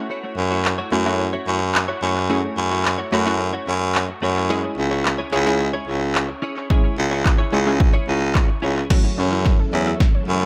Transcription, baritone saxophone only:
0.37 0.76 F#2 medium
0.92 1.31 F#2 loud
1.47 1.86 F#2 medium
2.02 2.41 F#2 medium
2.57 2.96 F#2 medium
3.12 3.51 F#2 loud
3.68 4.07 F#2 medium
4.23 4.62 F#2 medium
4.78 5.17 C#2 medium
5.33 5.72 C#2 loud
5.88 6.27 C#2 medium
6.98 7.37 C#2 medium
7.53 7.92 C#2 loud
8.08 8.47 C#2 medium
8.63 8.82 C#2 medium
9.18 9.57 F#2 medium
9.73 9.93 E2 medium
10.28 10.46 F#2 medium

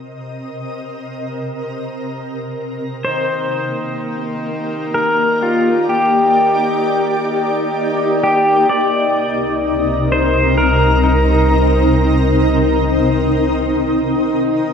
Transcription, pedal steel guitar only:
3.05 4.94 C5 medium
4.94 5.43 A#4 medium
5.43 5.91 F4 medium
5.89 8.20 G4 medium
8.24 8.72 G4 medium
8.69 10.12 D5 loud
10.12 10.60 C5 medium
10.58 11.06 A#4 medium
11.04 13.81 D#4 medium

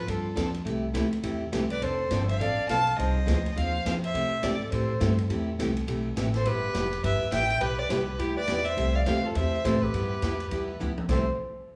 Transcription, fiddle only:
0.00 0.11 B4 medium
0.10 0.56 A4 medium
1.71 1.84 D5 medium
1.83 2.29 C5 medium
2.29 2.41 E5 medium
2.40 2.68 F5 medium
2.69 2.96 A5 loud
2.98 3.52 D#5 loud
3.52 3.59 D#5 medium
3.58 3.85 F5 medium
3.86 3.94 F5 loud
4.05 4.45 E5 loud
4.44 4.72 D5 medium
4.72 5.16 C5 medium
6.36 6.48 C5 medium
6.47 7.04 B4 loud
7.05 7.31 E5 loud
7.33 7.62 G5 loud
7.61 7.80 B4 loud
7.79 7.92 D5 loud
7.90 8.21 B4 medium
8.19 8.36 G4 medium
8.37 8.66 D5 loud
8.65 8.97 E5 loud
8.95 9.05 F5 medium
9.05 9.27 F5 medium
9.25 9.37 A4 medium
9.35 9.66 E5 medium
9.65 9.83 C5 loud
9.82 10.80 B4 medium
11.09 11.25 C5 medium

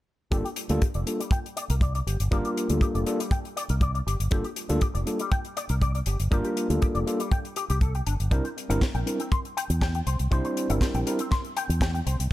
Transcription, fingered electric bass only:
0.32 0.40 G1 medium
0.70 0.78 D2 medium
0.95 1.03 F1 medium
1.70 2.00 C2 medium
2.07 2.15 G1 medium
2.20 2.28 G1 medium
2.32 2.40 G1 medium
2.70 2.78 D2 medium
2.95 3.03 F1 medium
3.70 4.00 C2 medium
4.07 4.15 G1 medium
4.20 4.28 G1 medium
4.32 4.40 G1 medium
4.70 4.78 D2 medium
4.95 5.03 F1 medium
5.70 6.00 C2 medium
6.07 6.15 G1 medium
6.20 6.27 G1 medium
6.32 6.40 G1 medium
6.70 6.78 D2 medium
6.95 7.03 F1 medium
7.70 8.00 C2 medium
8.07 8.15 G1 medium
8.20 8.28 G1 medium
8.31 8.40 C2 medium
8.70 8.78 G1 medium
8.95 9.02 A#1 medium
9.70 10.00 E2 medium
10.07 10.15 C2 medium
10.20 10.28 C2 medium
10.32 10.40 C2 medium
10.70 10.78 G1 medium
10.94 11.02 A#1 medium
11.69 12.00 E2 loud
12.06 12.15 C2 medium
12.20 12.27 C2 medium

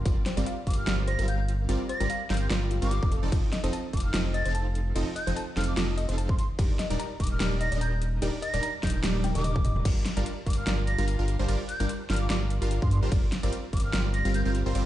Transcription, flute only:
0.67 0.76 D6 loud
0.78 0.94 F6 medium
1.08 1.25 A#6 loud
1.28 1.35 G6 medium
1.39 1.45 G6 medium
1.89 2.21 A#6 loud
2.30 2.37 G6 medium
2.41 2.47 G6 medium
2.82 3.16 D6 loud
3.93 4.02 D6 medium
4.05 4.21 F6 medium
4.35 4.51 A6 medium
5.16 5.33 G6 loud
5.57 5.66 F6 medium
5.68 5.74 D6 medium
5.77 5.84 D6 medium
6.29 6.35 C6 medium
6.38 6.45 C6 medium
7.20 7.29 D6 medium
7.31 7.47 F6 medium
7.61 7.78 A#6 loud
7.81 7.88 G6 medium
7.92 7.98 G6 medium
8.42 8.74 A#6 medium
8.83 8.90 G6 medium
8.95 9.00 G6 medium
9.35 9.85 D6 medium
10.46 10.55 D6 medium
10.58 10.74 F6 medium
10.87 11.04 A#6 loud
11.69 11.86 G6 medium
12.10 12.19 F6 medium
12.21 12.27 D6 medium
12.30 12.37 D6 medium
12.82 12.88 C6 medium
12.91 12.98 C6 medium
13.73 13.82 D6 medium
13.85 14.01 F6 medium
14.14 14.31 A#6 loud
14.34 14.42 G6 medium
14.46 14.51 G6 medium

